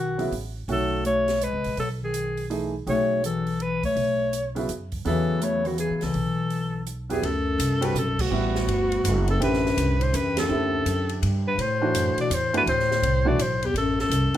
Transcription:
Already playing: B1 D#3 F#4
0.18 C#3 F#3 B3 E4, open hi-hat
0.32 A1, open hi-hat
0.68 B1 D#3 F#3 A3 C#4 F#4, open hi-hat
0.72 A4
1.05 A3 C#5, closed hi-hat
1.28 snare, open hi-hat
1.41 G#3 B4, closed hi-hat
1.53 C#2
1.64 A#1, open hi-hat
1.77 B1 F#3 A4, open hi-hat
2.01 D#3 G#4
2.14 closed hi-hat
2.37 open hi-hat
2.50 E3 A3 D#4 G#4, open hi-hat
2.87 B1 D#3 A3 C#4 F#4 G#4 C#5, open hi-hat
3.24 E3 A4, closed hi-hat
3.47 open hi-hat
3.60 E3 B4, closed hi-hat
3.83 A3 C#5, kick, open hi-hat
3.96 B1, open hi-hat
4.33 closed hi-hat
4.55 C#3 F#3 B3 E4, open hi-hat
4.69 F#2, closed hi-hat
4.92 kick, open hi-hat
5.05 E2 C#3 E3 F#3 B3 E4 A4, open hi-hat
5.41 A3 C#5, closed hi-hat
5.65 D#3 F#4, open hi-hat
5.77 E3 G#4, closed hi-hat
5.91 A2 E3
5.96 G#4
6.01 C#2 E3 A4, snare, open hi-hat
6.14 B1, open hi-hat
6.50 open hi-hat
6.87 closed hi-hat
7.09 E2 F#3 B3 E4 G4 G#4, open hi-hat
7.22 D2 F#2 A4, ride
7.58 C2, hi-hat pedal, ride
7.81 G2 G3 C4 F#4 A4, ride
7.85 B4
7.95 B1 F#2, hi-hat pedal
7.99 A4
8.19 D2 F#4, kick, crash
8.31 A1 G3 B3 E4 F#4
8.55 snare
8.68 G1, ride
8.92 ride
9.04 F#1, hi-hat pedal, ride
9.27 F#2 A4, ride
9.40 A1 F#2 D3 C4 E4 G4, ride
9.44 B4
9.54 snare
9.66 snare
9.77 C2, hi-hat pedal, ride
9.99 A2 C5, ride
10.13 E2 F#2 B4, hi-hat pedal, ride
10.37 F#2 A4, snare, ride
10.49 D2 D3 C4 E4 G4
10.86 F#2, hi-hat pedal, ride
11.09 ride
11.22 G2, ride
11.46 G2 B4
11.58 A2 C5, ride
11.81 E3 A3 D4 F#4
11.94 F#2, hi-hat pedal, ride
12.17 B2, muted upright bass stroke, ride
12.21 D5
12.30 E2 A2, hi-hat pedal, ride
12.35 C5
12.53 G2 E3 A3 D4 F#4, ride
12.58 B4
12.66 D2 A2 C5, ride
12.79 snare
12.91 snare
13.02 C2, ride
13.25 B2 E3 A3 D4 F#4 D5
13.39 B1 A2 C5, hi-hat pedal, ride
13.63 E2 G4, ride
13.74 A1 F#2 A4, ride
13.99 F#2 A4, snare
14.10 C2, hi-hat pedal, ride
14.33 E3, muted upright bass stroke

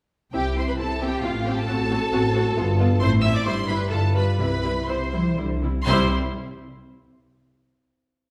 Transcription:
0.32 C2 C3 C4 E4 G4 G5
0.56 C4 E4 C5 C6
0.68 B4 B5
0.78 C2 C3 C4 E4 A4 A5
1.01 C4 E4 G4 G5
1.24 A1 A2 C4 F4 F5
1.46 C4 F4 G4 G5
1.58 A4 A5
1.69 A1 A2 C4 F#4
1.91 C4 F#4
2.13 A1 A2 C4 F#4
2.35 C4 F#4
2.57 G1 G2 B3 F4
2.79 B3 F4
3.00 A1 A2 A3 C4 E4 C5 C6
3.22 C4 E4 E5 E6
3.34 D5 D6
3.45 G1 G2 G3 E4 C5 C6
3.67 G3 E4 B4 B5
3.90 G1 G2 G3 F4 A4 A5
4.14 G3 F4 B4 B5
4.38 C2 C3 G3 E4 B4 B5
4.63 G3 E4
4.87 C2 C3 G3 E4 C5 C6
5.13 F3 G3 E4
5.26 E3
5.37 C2 D3 G3 E4
5.62 C3 G3 E4
5.84 C2 C3 G3 E4 C5 C6

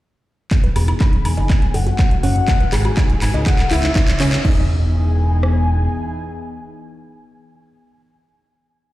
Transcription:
0.51 E3 B3 D#4 G#4 D#5, kick, clap, closed hi-hat, riser
0.64 B4, closed hi-hat
0.76 E1 G#4, closed hi-hat, open hi-hat, high woodblock
0.88 E4, snare, closed hi-hat, high woodblock
1.00 D#4 B5, kick, snare, clap, closed hi-hat
1.13 closed hi-hat
1.25 E1 G#5, closed hi-hat, open hi-hat, high woodblock
1.37 F#1 D#5, snare, closed hi-hat
1.49 A3 C#4 F#4 C#5, kick, clap, closed hi-hat
1.62 snare, closed hi-hat
1.74 F#1 A4 F#5, closed hi-hat, open hi-hat
1.86 F#4, snare, closed hi-hat
1.99 kick, snare, clap, closed hi-hat
2.11 closed hi-hat
2.23 F#1 C#4 F#5, closed hi-hat, open hi-hat
2.36 closed hi-hat
2.48 G#3 D#4 B4 D#5, kick, clap, closed hi-hat
2.60 B4, closed hi-hat
2.72 G#1 G#4 G#5, snare, clap, closed hi-hat, open hi-hat, high woodblock
2.85 F#4, closed hi-hat, high woodblock
2.97 D#4, kick, snare, clap, closed hi-hat
3.10 closed hi-hat
3.21 G#1 G#5, clap, closed hi-hat, open hi-hat, high woodblock
3.34 C#2 D#5, snare, closed hi-hat
3.46 C#3 C#4 E4 G#4 F#5, kick, clap, closed hi-hat
3.59 clap, closed hi-hat
3.71 C#2 E4 E5, clap, closed hi-hat, open hi-hat
3.83 D#4, snare, clap, closed hi-hat
3.96 kick, snare, clap, closed hi-hat
4.08 clap, closed hi-hat
4.20 C#2 C#4, clap, closed hi-hat, open hi-hat
4.32 snare, clap
4.45 E1 E3 B3 D#4 G#4 G#5, kick, crash, impact
5.43 cross-stick

